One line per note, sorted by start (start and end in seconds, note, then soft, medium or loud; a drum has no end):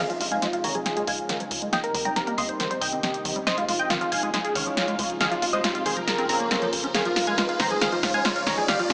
0.00 0.85 C3 medium
0.00 1.71 F3 medium
0.00 1.71 G#3 medium
0.00 4.30 D#4 medium
0.00 1.71 F4 medium
0.00 riser medium
0.10 0.13 F3 medium
0.10 0.19 F4 medium
0.10 0.19 F5 medium
0.10 closed hi-hat soft
0.21 0.35 F1 loud
0.21 0.30 F4 medium
0.21 0.30 F5 medium
0.21 open hi-hat loud
0.31 0.39 G#3 medium
0.31 0.41 F5 medium
0.31 0.41 G#5 medium
0.31 0.41 G#6 medium
0.31 closed hi-hat soft
0.42 0.47 G#3 medium
0.42 0.52 F4 medium
0.42 0.52 F5 medium
0.42 snare soft
0.42 closed hi-hat medium
0.53 0.63 F4 medium
0.53 0.63 F5 medium
0.53 closed hi-hat soft
0.64 0.78 F1 medium
0.64 0.72 D#3 medium
0.64 0.74 C#5 medium
0.64 0.74 A#5 medium
0.64 0.74 A#6 medium
0.64 open hi-hat medium
0.75 0.78 F3 medium
0.75 0.85 G#4 medium
0.75 0.85 G#5 medium
0.75 closed hi-hat soft
0.86 1.72 C#3 medium
0.86 0.95 G#4 medium
0.86 0.95 G#5 medium
0.86 snare soft
0.86 closed hi-hat medium
0.97 1.04 G#3 medium
0.97 1.06 G#4 medium
0.97 1.06 G#5 medium
0.97 closed hi-hat soft
1.07 1.21 C#2 loud
1.07 1.13 G#3 medium
1.07 1.64 F5 medium
1.07 1.64 G#5 medium
1.07 1.64 G#6 medium
1.07 open hi-hat medium
1.18 closed hi-hat soft
1.29 1.37 D#3 medium
1.29 snare soft
1.29 closed hi-hat medium
1.40 1.43 F3 medium
1.40 closed hi-hat soft
1.51 1.65 C#2 loud
1.51 open hi-hat loud
1.62 1.69 G#3 medium
1.73 2.58 C3 medium
1.73 3.45 G3 medium
1.73 2.59 A#3 medium
1.73 1.78 A#3 medium
1.73 2.58 G4 medium
1.73 1.82 D#5 medium
1.73 1.82 G5 loud
1.73 1.82 G6 loud
1.73 snare medium
1.73 closed hi-hat medium
1.84 1.93 A#4 medium
1.84 1.93 A#5 medium
1.84 closed hi-hat soft
1.94 2.08 D#2 medium
1.94 2.02 D#3 medium
1.94 2.04 A#4 medium
1.94 2.04 A#5 medium
1.94 open hi-hat loud
2.05 2.08 G3 medium
2.05 2.15 G5 medium
2.05 2.15 A#5 medium
2.05 2.15 A#6 medium
2.05 closed hi-hat soft
2.16 2.26 A#4 medium
2.16 2.26 A#5 medium
2.16 snare medium
2.16 closed hi-hat medium
2.27 2.35 A#3 medium
2.27 2.37 A#4 medium
2.27 2.37 A#5 medium
2.27 closed hi-hat soft
2.38 2.52 D#2 medium
2.38 2.43 A#3 medium
2.38 2.48 D#5 medium
2.38 2.48 C6 medium
2.38 2.47 C7 medium
2.38 open hi-hat medium
2.49 2.58 C5 medium
2.49 2.58 C6 medium
2.49 closed hi-hat soft
2.60 4.32 C3 medium
2.60 3.46 D#3 medium
2.60 2.67 D#3 medium
2.60 3.46 G4 medium
2.60 2.69 C5 medium
2.60 2.69 C6 medium
2.60 snare soft
2.60 closed hi-hat medium
2.70 2.74 G3 medium
2.70 2.80 C5 medium
2.70 2.80 C6 medium
2.70 closed hi-hat soft
2.81 2.95 C2 loud
2.81 3.38 D#5 medium
2.81 3.38 G5 loud
2.81 3.38 G6 medium
2.81 open hi-hat loud
2.92 3.00 C4 medium
2.92 closed hi-hat soft
3.03 3.08 C4 medium
3.03 snare medium
3.03 closed hi-hat medium
3.14 closed hi-hat soft
3.25 3.39 C2 loud
3.25 3.32 D#3 medium
3.25 open hi-hat loud
3.36 3.39 G3 medium
3.36 closed hi-hat soft
3.47 4.32 F3 medium
3.47 6.05 G#3 medium
3.47 8.64 F4 medium
3.47 3.56 C5 medium
3.47 3.56 D#5 medium
3.47 3.56 D#6 loud
3.47 snare medium
3.47 closed hi-hat medium
3.58 3.65 G#3 medium
3.58 3.67 F4 medium
3.58 3.67 F5 medium
3.58 closed hi-hat soft
3.68 3.82 F1 loud
3.68 3.73 G#3 medium
3.68 3.78 F4 medium
3.68 3.78 F5 medium
3.68 open hi-hat loud
3.79 3.89 D#5 medium
3.79 3.89 G5 loud
3.79 3.89 G6 medium
3.79 closed hi-hat soft
3.90 3.98 D#3 medium
3.90 4.00 F4 medium
3.90 4.00 F5 medium
3.90 snare medium
3.90 closed hi-hat medium
4.01 4.04 F3 medium
4.01 4.11 F4 medium
4.01 4.11 F5 medium
4.01 closed hi-hat soft
4.12 4.26 F1 medium
4.12 4.22 F5 medium
4.12 4.22 G#5 medium
4.12 4.21 G#6 medium
4.12 open hi-hat loud
4.23 4.30 G#3 medium
4.23 4.32 G#4 medium
4.23 4.32 G#5 medium
4.23 closed hi-hat soft
4.34 5.20 C#3 medium
4.34 8.64 F3 medium
4.34 4.39 G#3 medium
4.34 6.06 D#4 medium
4.34 4.43 G#4 medium
4.34 4.43 G#5 medium
4.34 snare medium
4.34 closed hi-hat medium
4.44 4.54 G#4 medium
4.44 4.54 G#5 medium
4.44 closed hi-hat soft
4.55 4.69 C#2 loud
4.55 4.63 D#3 medium
4.55 5.12 C#5 medium
4.55 5.12 F5 loud
4.55 5.12 F6 medium
4.55 open hi-hat loud
4.66 4.69 F3 medium
4.77 snare medium
4.77 closed hi-hat medium
4.88 4.95 G#3 medium
4.88 closed hi-hat soft
4.99 5.13 C#2 loud
4.99 5.04 G#3 medium
4.99 open hi-hat loud
5.10 closed hi-hat soft
5.21 6.07 C3 medium
5.21 5.28 D#3 medium
5.21 5.30 G#4 medium
5.21 5.30 F5 loud
5.21 5.30 F6 medium
5.21 snare medium
5.21 closed hi-hat medium
5.31 5.34 F3 medium
5.31 5.41 F4 medium
5.31 5.41 F5 medium
5.31 closed hi-hat soft
5.42 5.56 F1 loud
5.42 5.52 F4 medium
5.42 5.52 F5 medium
5.42 open hi-hat loud
5.53 5.61 G#3 medium
5.53 5.63 C5 medium
5.53 5.63 D#5 medium
5.53 5.63 D#6 medium
5.53 closed hi-hat soft
5.64 5.69 G#3 medium
5.64 5.74 F4 medium
5.64 5.74 F5 medium
5.64 snare medium
5.64 closed hi-hat medium
5.75 5.85 F4 medium
5.75 5.85 F5 medium
5.75 closed hi-hat soft
5.86 6.00 F1 medium
5.86 5.93 D#3 medium
5.86 5.95 G#4 medium
5.86 5.95 C5 loud
5.86 5.95 C6 medium
5.86 open hi-hat loud
5.97 6.00 F3 medium
5.97 6.06 A#4 medium
5.97 6.06 A#5 medium
5.97 closed hi-hat soft
6.07 6.94 C#3 medium
6.07 6.94 A#3 medium
6.07 6.17 A#4 medium
6.07 6.94 C5 medium
6.07 6.17 A#5 medium
6.07 snare medium
6.07 closed hi-hat medium
6.18 6.26 C4 medium
6.18 6.28 A#4 medium
6.18 6.28 A#5 medium
6.18 closed hi-hat soft
6.29 6.43 A#1 medium
6.29 6.37 C4 loud
6.29 6.86 C#4 medium
6.29 6.86 A#4 loud
6.29 6.86 A#5 loud
6.29 open hi-hat loud
6.40 6.48 A#3 medium
6.51 6.56 C4 loud
6.51 snare medium
6.51 closed hi-hat medium
6.62 6.67 F3 medium
6.62 closed hi-hat soft
6.73 6.87 A#1 medium
6.73 open hi-hat loud
6.84 6.87 C#4 medium
6.84 closed hi-hat soft
6.94 7.81 C3 medium
6.94 7.02 D#3 medium
6.94 8.67 G#3 medium
6.94 8.93 D#4 medium
6.94 7.04 G#4 medium
6.94 7.04 F5 medium
6.94 7.04 F6 medium
6.94 snare medium
6.94 closed hi-hat medium
7.05 7.08 F3 medium
7.05 7.15 F4 medium
7.05 7.15 F5 medium
7.05 closed hi-hat soft
7.16 7.30 F1 medium
7.16 7.26 F4 medium
7.16 7.26 F5 medium
7.16 snare medium
7.16 open hi-hat loud
7.27 7.35 G#3 medium
7.27 7.37 F5 medium
7.27 7.37 G#5 medium
7.27 7.37 G#6 medium
7.27 closed hi-hat soft
7.38 7.43 G#3 medium
7.38 7.48 F4 medium
7.38 7.48 F5 medium
7.38 snare medium
7.38 closed hi-hat medium
7.49 7.58 F4 medium
7.49 7.58 F5 medium
7.49 closed hi-hat soft
7.60 7.74 F1 medium
7.60 7.67 D#3 medium
7.60 7.69 C5 medium
7.60 7.69 A#5 medium
7.60 7.69 A#6 medium
7.60 snare medium
7.60 open hi-hat loud
7.71 7.74 F3 medium
7.71 7.80 G#4 medium
7.71 7.80 G#5 medium
7.71 closed hi-hat soft
7.81 8.68 C#3 medium
7.81 7.89 D#3 medium
7.81 7.91 G#4 medium
7.81 7.91 F5 medium
7.81 7.91 F6 medium
7.81 snare medium
7.81 closed hi-hat medium
7.92 7.95 F3 medium
7.92 8.02 F4 medium
7.92 8.02 F5 medium
7.92 closed hi-hat soft
8.03 8.17 C#2 loud
8.03 8.13 F4 medium
8.03 8.13 F5 medium
8.03 snare medium
8.03 open hi-hat loud
8.14 8.22 G#3 medium
8.14 8.24 F5 medium
8.14 8.24 G#5 medium
8.14 8.24 G#6 medium
8.14 closed hi-hat soft
8.25 8.30 G#3 medium
8.25 8.35 F4 medium
8.25 8.35 F5 medium
8.25 snare medium
8.25 closed hi-hat medium
8.36 8.45 F4 medium
8.36 8.45 F5 medium
8.36 closed hi-hat soft
8.47 8.61 C#2 loud
8.47 8.54 D#3 medium
8.47 8.56 C#5 medium
8.47 8.56 A#5 medium
8.47 8.56 A#6 medium
8.47 snare medium
8.47 open hi-hat loud
8.58 8.61 F3 medium
8.58 8.67 G#4 medium
8.58 8.67 G#5 medium
8.58 closed hi-hat soft
8.68 8.93 C3 medium
8.68 8.76 D#3 medium
8.68 8.93 G3 medium
8.68 8.93 A#3 medium
8.68 8.93 G4 medium
8.68 8.78 G4 medium
8.68 8.78 F5 medium
8.68 8.78 F6 loud
8.68 snare medium
8.68 closed hi-hat medium
8.79 8.82 F3 medium
8.79 8.89 F4 medium
8.79 8.89 F5 medium
8.79 closed hi-hat soft
8.90 8.93 D#2 loud
8.90 snare medium
8.90 open hi-hat loud